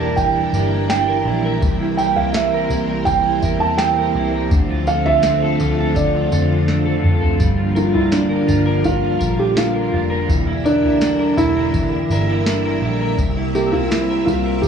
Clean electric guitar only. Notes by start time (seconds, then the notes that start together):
Already playing: E3 G3 D4 E4
0.00 A#4
0.18 E3
0.36 E4
0.55 A#4
0.72 E4
0.91 D4
1.08 A#4
1.27 E4
1.44 A#4
1.62 C3
1.80 E4
1.98 A#4
2.17 E4
2.35 C4
2.53 A#4
2.71 E4
2.90 A#4
3.08 C3
3.26 E4
3.44 A#4
3.63 E4
3.80 C4
3.98 A#4
4.17 E4
4.34 A#4
4.52 D3
4.70 F4
4.88 A4
5.06 F4
5.24 C4
5.42 A4
5.60 F4
5.79 A4
5.97 D3
6.15 F4
6.32 A4
6.50 F4
6.69 C4
6.86 A4
7.03 F4
7.21 A4
7.39 G3
7.57 F4
7.75 A#4
7.93 F4
8.12 D4
8.29 A#4
8.47 F4
8.66 A#4
8.84 G3
9.02 F4
9.20 A#4
9.38 F4
9.56 D4
9.74 A#4
9.92 F4
10.10 A#4
10.28 E3
10.47 E4
10.65 A#4
10.83 E4
11.01 D4
11.19 A#4
11.38 E4
11.56 A#4
11.75 E3
11.92 E4
12.11 A#4
12.29 E4
12.47 D4
12.65 A#4
12.83 E4
13.01 A#4
13.19 C3
13.37 E4
13.55 A#4
13.73 E4
13.91 C4
14.09 A#4
14.46 A#4
14.64 C3